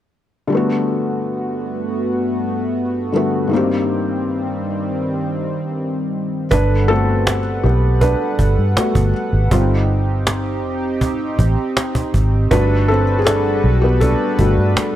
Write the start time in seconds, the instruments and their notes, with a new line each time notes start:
0.47 analog synth pad G2 A3 B3 F#4, felt piano D3 G3
0.52 felt piano A3 B3
0.57 felt piano F#4
3.12 felt piano D3 G3 A3 B3
3.17 felt piano F#4
3.48 felt piano G2 D#3 G3, analog synth pad G3
3.52 analog synth pad G2 D#3 C4, felt piano A#3 C4
3.57 felt piano G4
6.51 fingered electric bass G1, analog synth pad G3 A4 B4 F#5, felt piano D4 B4, cajon bass
6.88 felt piano A3 B3 C4 F#4 A4
7.27 cajon slap
7.64 fingered electric bass B1, felt piano B3 G4
8.01 felt piano D4 B4, cajon bass
8.39 fingered electric bass G1, cajon bass
8.58 fingered electric bass G2
8.77 felt piano A3 B3 F#4, muted fingered electric bass stroke, cajon slap
8.95 fingered electric bass G1, cajon bass
9.33 fingered electric bass G#1
9.51 fingered electric bass G1, felt piano G3 C4 F4, analog synth pad C4 D#4 G4, cajon bass
10.27 cajon slap
10.64 fingered electric bass F1
11.01 fingered electric bass G1, cajon bass
11.39 fingered electric bass A1, cajon bass
11.77 cajon slap
11.95 cajon bass
12.14 fingered electric bass G#1, cajon bass
12.51 fingered electric bass G1, analog synth pad G3 D4 F#4 A4 B4, felt piano G3 A3 D4 F#4 B4, cajon bass
12.88 felt piano C4 A4, cajon slap
13.19 felt piano G#4
13.25 felt piano D4 A4, cajon slap
13.64 fingered electric bass B1
13.82 felt piano B3 G4
14.00 felt piano D4 A4, cajon bass
14.39 fingered electric bass G1, felt piano G3 A3 D4 F#4, cajon bass
14.58 fingered electric bass G2
14.77 muted fingered electric bass stroke, cajon slap